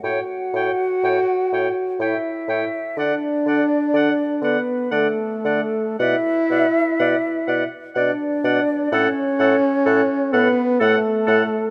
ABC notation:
X:1
M:3/4
L:1/8
Q:1/4=62
K:A
V:1 name="Oboe"
=g g g g g g | f f f f f f | f f f f f f | f f f f f f |]
V:2 name="Clarinet"
c c c c c c | d d d d d d | d d d d d d | A A A A A A |]
V:3 name="Flute"
f4 e2 | d3 B A2 | e3 z d2 | c3 B A2 |]
V:4 name="French horn"
F4 E2 | D3 B, A,2 | E3 z D2 | C3 B, A,2 |]
V:5 name="Bassoon" clef=bass
A,, A,, A,, A,, A,, A,, | D, D, D, D, D, D, | B,, B,, B,, B,, B,, B,, | A,, A,, A,, A,, A,, A,, |]